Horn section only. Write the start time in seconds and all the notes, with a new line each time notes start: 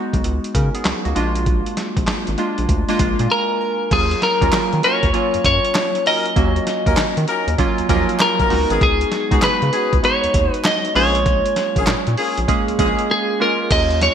4.41 C#4 D#4 F#4 A#4
4.83 C#4 D#4 F#4 A#4
6.05 C#4 D#4 F#4 A#4
6.86 C#4 D#4 F#4 A#4
7.28 C#4 D#4 F#4 A#4
7.89 C#4 D#4 F#4 A#4
8.39 C#4 D#4 F#4 A#4
8.70 B3 C#4 F#4 G#4
9.31 B3 C#4 F#4 G#4
9.73 B3 C#4 F#4 G#4
10.95 A#3 C#4 F4 G#4
11.76 A#3 C#4 F4 G#4
12.17 A#3 C#4 F4 G#4
12.79 A#3 C#4 F4 G#4